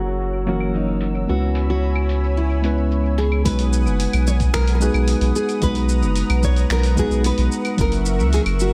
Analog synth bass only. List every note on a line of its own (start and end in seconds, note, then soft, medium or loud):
0.00 1.26 F#1 medium
1.29 3.43 C#2 medium
3.46 3.88 B1 loud
3.86 4.07 F#1 medium
4.14 4.49 B1 loud
4.54 4.89 B1 medium
4.94 5.15 B1 medium
5.21 5.31 B1 loud
5.62 6.04 B1 loud
6.02 6.23 F#1 medium
6.30 6.65 B1 loud
6.70 7.05 B1 loud
7.11 7.31 B1 medium
7.38 7.48 B1 loud
7.78 8.21 F#1 loud
8.19 8.40 C#2 loud
8.46 8.73 F#1 loud